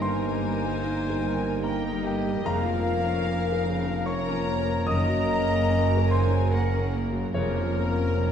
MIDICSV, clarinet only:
0, 0, Header, 1, 2, 480
1, 0, Start_track
1, 0, Tempo, 806452
1, 12, Time_signature, 3, 2, 24, 8
1, 2412, Tempo, 824176
1, 4897, End_track
2, 0, Start_track
2, 0, Title_t, "Clarinet"
2, 0, Program_c, 0, 71
2, 9, Note_on_c, 0, 72, 103
2, 972, Note_off_c, 0, 72, 0
2, 976, Note_on_c, 0, 70, 72
2, 1214, Note_on_c, 0, 67, 83
2, 1223, Note_off_c, 0, 70, 0
2, 1460, Note_on_c, 0, 70, 110
2, 1469, Note_off_c, 0, 67, 0
2, 2412, Note_off_c, 0, 70, 0
2, 2416, Note_on_c, 0, 73, 98
2, 2888, Note_on_c, 0, 75, 114
2, 2896, Note_off_c, 0, 73, 0
2, 3506, Note_off_c, 0, 75, 0
2, 3605, Note_on_c, 0, 72, 93
2, 3843, Note_on_c, 0, 70, 77
2, 3852, Note_off_c, 0, 72, 0
2, 4087, Note_off_c, 0, 70, 0
2, 4329, Note_on_c, 0, 61, 89
2, 4897, Note_off_c, 0, 61, 0
2, 4897, End_track
0, 0, End_of_file